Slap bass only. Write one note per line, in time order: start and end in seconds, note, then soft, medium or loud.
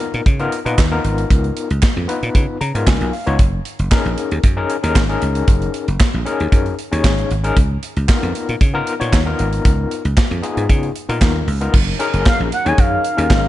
0.14 0.23 A#2 loud
0.26 0.46 C#3 medium
0.66 0.75 A#2 medium
0.78 0.98 D#2 loud
1.04 1.24 G#1 medium
1.30 1.50 C#2 loud
1.71 1.80 C#2 loud
1.97 2.06 F2 medium
2.23 2.32 A#2 loud
2.35 2.45 C#3 medium
2.61 2.71 C#3 medium
2.75 2.84 G#2 loud
2.87 2.97 C#2 medium
3.01 3.10 B1 medium
3.27 3.36 C#2 medium
3.39 3.59 F#1 medium
3.79 3.88 F#1 medium
4.05 4.14 A#1 medium
4.32 4.41 D#2 medium
4.44 4.63 F#2 loud
4.84 4.93 D#2 medium
4.96 5.15 G#1 medium
5.22 5.41 C#2 medium
5.48 5.67 F#1 medium
5.88 5.97 F#1 loud
6.14 6.23 A#1 medium
6.40 6.49 D#2 medium
6.52 6.72 F#2 loud
6.92 7.01 D#2 medium
7.04 7.24 G#1 loud
7.31 7.50 G#1 medium
7.57 7.76 C#2 loud
7.97 8.06 C#2 medium
8.23 8.32 F2 medium
8.49 8.58 A#2 medium
8.61 8.80 C#3 medium
9.01 9.10 A#2 medium
9.13 9.32 D#2 medium
9.39 9.59 G#1 medium
9.65 9.85 C#2 medium
10.05 10.14 C#2 loud
10.31 10.40 F2 medium
10.57 10.66 G#2 medium
10.70 10.89 C#3 loud
11.09 11.18 A#2 medium
11.21 11.41 D#2 medium
11.47 11.67 C#2 medium
11.74 11.93 F#1 loud
12.14 12.23 F#1 loud
12.40 12.49 A#1 medium
12.66 12.75 D#2 loud
12.78 12.98 F#2 loud
13.18 13.27 D#2 loud
13.30 13.48 G#1 loud